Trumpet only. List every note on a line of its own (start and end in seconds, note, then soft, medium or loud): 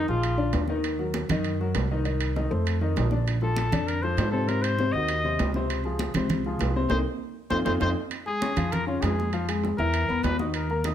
0.09 0.65 F4 medium
3.43 3.89 A4 medium
3.87 4.04 A#4 medium
4.02 4.31 C5 loud
4.31 4.50 A4 medium
4.48 4.64 A#4 medium
4.62 4.94 C5 loud
4.92 5.53 D#5 loud
6.90 6.97 C5 medium
7.50 7.58 C5 loud
7.65 7.73 C5 medium
7.82 7.89 C5 loud
8.27 8.73 G#4 loud
8.72 8.86 A#4 medium
8.87 9.03 F4 medium
9.01 9.32 G#4 medium
9.78 10.24 A#4 loud
10.23 10.39 B4 loud
10.39 10.55 F#4 medium
10.55 10.85 A#4 medium